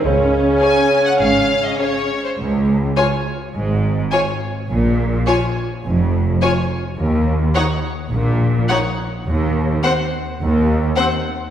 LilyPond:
<<
  \new Staff \with { instrumentName = "Violin section" } { \time 4/4 \key des \major \tempo 4 = 105 r4 aes''8. ges''16 f''8. ees''16 des''8. c''16 | r4 aes''4 r4 aes''4 | r4 aes''4 r4 aes''4 | r4 ges''4 r4 ges''4 |
r4 ges''4 r4 ges''4 | }
  \new Staff \with { instrumentName = "Violin section" } { \time 4/4 \key des \major r4 <aes' des''>4 r4 <aes' des''>4 | r4 des''4 r4 des''4 | r4 des''4 r4 des''4 | r4 des''4 r4 des''4 |
r4 c''4 r4 c''4 | }
  \new Staff \with { instrumentName = "Viola section" } { \time 4/4 \key des \major des'2.~ des'8 r8 | r4 f'4 r4 f'4 | r4 f'4 r4 f'4 | r4 ees'4 r4 ees'4 |
r4 c'4 r4 c'4 | }
  \new Staff \with { instrumentName = "Bassoon" } { \clef bass \time 4/4 \key des \major des2.~ des8 r8 | r1 | r1 | r1 |
r1 | }
  \new Staff \with { instrumentName = "Cello section" } { \clef bass \time 4/4 \key des \major des,4 r4 aes,4 r4 | des,4 r4 aes,4 r4 | bes,4 r4 f,4 r4 | ees,4 r4 bes,4 r4 |
ees,4 r4 ees,4 r4 | }
  \new Staff \with { instrumentName = "Double bass section" } { \clef bass \time 4/4 \key des \major des,4 r4 aes,,4 r4 | des,4 r4 aes,,4 r4 | bes,,4 r4 f,,4 r4 | ees,4 r4 bes,,4 r4 |
ees,4 r4 ees,4 r4 | }
>>